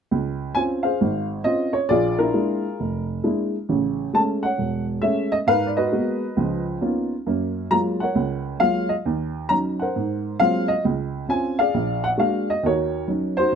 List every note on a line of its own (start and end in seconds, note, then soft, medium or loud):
0.11 0.50 C#2 medium
0.55 0.86 C4 soft
0.55 0.87 C#4 soft
0.55 0.87 F4 medium
0.55 0.61 G#5 loud
0.83 1.70 G#4 soft
0.83 1.70 C5 medium
0.83 1.25 F5 medium
1.01 1.39 G#1 medium
1.44 1.76 C4 soft
1.44 1.76 C#4 soft
1.44 1.76 F4 medium
1.44 1.75 D#5 loud
1.73 1.90 C#5 medium
1.89 2.29 A#1 medium
1.89 2.76 F4 medium
1.89 2.75 G#4 medium
1.89 2.16 D5 loud
2.19 2.33 D4 medium
2.19 2.33 E4 medium
2.19 3.04 A#4 medium
2.34 2.65 G#3 medium
2.34 2.65 A#3 soft
2.34 2.65 D4 soft
2.34 2.65 E4 medium
2.80 3.18 F1 medium
3.24 3.54 G#3 medium
3.24 3.55 A#3 soft
3.24 3.55 D4 soft
3.24 3.55 E4 medium
3.69 4.07 A1 medium
3.69 4.08 C#3 medium
4.13 4.44 G#3 medium
4.13 4.44 A3 soft
4.13 4.44 C#4 medium
4.13 4.21 A5 medium
4.43 5.29 C#5 medium
4.43 4.84 F#5 medium
4.58 4.97 E1 medium
5.02 5.33 G#3 medium
5.02 5.34 A3 medium
5.02 5.34 C#4 medium
5.02 5.32 E5 medium
5.32 5.37 D#5 loud
5.47 5.86 G#2 medium
5.47 6.33 A#4 medium
5.47 5.76 B4 medium
5.47 5.68 F5 loud
5.67 5.76 D5 medium
5.77 5.91 F#4 medium
5.77 6.62 B4 medium
5.77 6.62 D#5 medium
5.92 6.23 G#3 soft
5.92 6.23 A#3 soft
5.92 6.23 B3 soft
5.92 6.23 F#4 medium
6.37 6.76 C#2 medium
6.37 6.76 F3 medium
6.81 7.12 A#3 medium
6.81 7.12 B3 soft
6.81 7.12 C#4 soft
6.81 7.12 D#4 soft
6.81 7.12 F4 medium
7.27 7.65 F#2 medium
7.27 7.65 A#3 medium
7.71 8.02 F#3 soft
7.71 8.02 G#3 soft
7.71 8.02 A#3 soft
7.71 8.02 F4 medium
7.71 7.77 A#5 medium
8.00 8.87 A#4 medium
8.00 8.87 C#5 medium
8.00 8.42 F#5 medium
8.15 8.54 C#2 medium
8.60 8.91 F#3 soft
8.60 8.91 G#3 soft
8.60 8.91 A#3 soft
8.60 8.91 F4 medium
8.60 8.90 F5 loud
8.89 8.94 D#5 medium
9.05 9.44 D#2 medium
9.49 9.81 F#3 soft
9.49 9.81 C#4 soft
9.49 9.81 D#4 medium
9.49 9.56 A#5 loud
9.80 10.66 A#4 medium
9.80 10.66 C5 medium
9.80 10.21 F#5 medium
9.96 10.34 G#2 medium
10.40 10.71 F#3 medium
10.40 10.71 G#3 soft
10.40 10.71 A#3 soft
10.40 10.71 C4 medium
10.40 10.71 F4 medium
10.40 10.70 F5 loud
10.68 10.83 D#5 medium
10.85 11.23 C#2 medium
11.29 11.59 C4 soft
11.29 11.59 C#4 soft
11.29 11.60 F4 medium
11.29 11.59 G#5 medium
11.59 12.45 G#4 medium
11.59 12.45 D5 medium
11.59 12.04 F5 medium
11.74 12.13 A#1 medium
12.04 12.09 F#5 medium
12.18 12.49 G#3 medium
12.18 12.49 A#3 medium
12.18 12.49 D4 soft
12.18 12.49 F#4 medium
12.18 12.49 F5 medium
12.50 12.65 D#5 medium
12.63 13.02 D#2 medium
12.63 13.02 D#3 medium
12.63 13.38 F#4 medium
12.63 13.50 A#4 medium
12.63 13.06 C#5 medium
13.08 13.38 F#3 soft
13.08 13.39 C#4 soft
13.08 13.37 D#4 medium
13.37 13.55 D#4 medium
13.37 13.55 F#4 medium
13.37 13.55 C5 loud